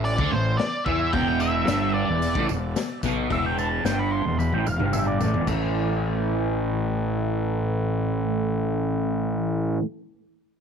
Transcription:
Already playing: A1 A2
0.05 D5, open hi-hat
0.18 D2 D3, kick
0.31 A1 A2 C5
0.57 D5, snare, open hi-hat
0.85 E2 E3 E5, kick
1.13 E1 E2 G5, kick, open hi-hat
1.40 E5, tambourine
1.67 G1 G2, snare, open hi-hat, tambourine
1.94 D5
2.08 E1 E2
2.22 open hi-hat, tambourine
2.35 A1 A2, kick
2.49 E1 E2, tambourine
2.76 snare, open hi-hat, tambourine
3.03 B1 B2, kick, tambourine
3.30 E1 E2 E5, kick, open hi-hat, tambourine
3.46 G5
3.58 A5, tambourine
3.84 G1 G2 G5, snare, open hi-hat, tambourine
3.99 B5
4.11 C6
4.26 E1 E2
4.39 B5, high tom, tambourine
4.52 A1 A2 G5, high tom
4.66 E1 E2 F5, tambourine
4.79 G1 G2, mid tom
4.93 E5, mid tom, tambourine
5.07 D5
5.21 A1 A2, floor tom, tambourine
5.34 E1 E2, floor tom
5.46 A1 A2 E3 A3, kick, floor tom, tambourine, crash

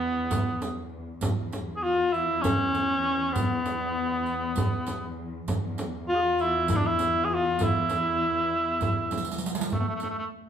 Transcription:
Already playing: E2 B3
0.31 riq, frame drum
0.62 riq, frame drum
1.21 E2, riq, frame drum
1.52 riq, frame drum
1.76 G#4
1.83 F4
2.12 E4, riq
2.42 C#4, riq, frame drum
2.75 riq, frame drum
3.07 C#4
3.32 B3, riq, frame drum
3.66 riq, frame drum
4.26 riq
4.56 riq, frame drum
4.87 riq, frame drum
5.48 E2, riq, frame drum
5.78 riq, frame drum
6.08 F4
6.15 G#4
6.21 F4
6.39 E4, riq
6.67 E4, riq, frame drum
6.76 D4
6.84 E4
6.99 riq, frame drum
7.24 G#4
7.30 F4
7.34 F4
7.59 E4, riq, frame drum
7.63 E4
7.89 riq, frame drum
8.81 riq, frame drum
9.11 riq, frame drum
9.18 riq
9.25 riq
9.32 riq
9.38 riq
9.46 riq
9.55 riq
9.61 riq
9.70 A3, riq, frame drum
9.79 A3 B3
9.87 A3
9.95 A3
10.00 A3, riq, frame drum
10.10 A3
10.18 A3

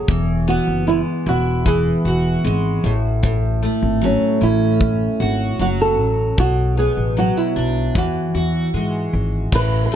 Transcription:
Already playing: F#3 A3 C#4 F#4 G#4
0.08 E1 E3, kick
0.48 B3 F#4
0.67 F#1
0.87 G#3 E4
1.26 E1 E4 F#4
1.66 E3 G#4, kick
2.05 E1 F#4
2.45 G#1 G#3
2.84 A1 A2
3.23 A2, kick
3.63 A3
3.83 G#1
4.01 F#3 C#4
4.41 A1 C#4 E4
4.81 kick
5.20 G#1 F#4
5.59 F#1 F#3 F#4
5.81 A4
5.99 A1
6.38 B1 B2 F#4, kick
6.77 B3 G#4
6.97 A1
7.17 F#3 F#4
7.37 E4
7.56 B1 D4
7.95 E2 E3 F#4, kick
8.34 E2 F#4
8.74 G#2 G#3
9.13 G#1
9.52 A1 A2 B4, kick, crash
9.86 B4
9.92 A3

